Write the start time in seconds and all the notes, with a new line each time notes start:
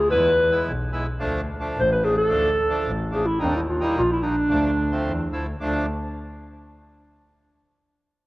0.00 G#4
0.09 E2 G#3 B3 E4 B4
0.51 G#3 B3 E4
0.66 B1
0.92 G#3 B3 E4
1.19 D2 F3 A3 D4
1.60 F3 A3 D4
1.77 A1 C5
1.92 B4
2.02 F3 A3 D4 G#4
2.17 A4
2.28 D2 F3 A3 D4
2.69 F3 A3 D4
2.86 A1
3.11 F3 A3 D4 G#4
3.26 E4
3.39 D#2 G3 A#3 D4 D#4
3.45 C4 D4
3.56 E4
3.69 F4
3.80 G3 A#3 D#4
3.85 E4
3.96 A#1 F4
4.12 E4
4.22 G3 A#3 D4 D#4
4.50 D2 F3 A3 D4
4.92 F3 A3 C4
5.06 E2
5.32 D2 F3 A3 E4
5.60 D2 F3 A3 D4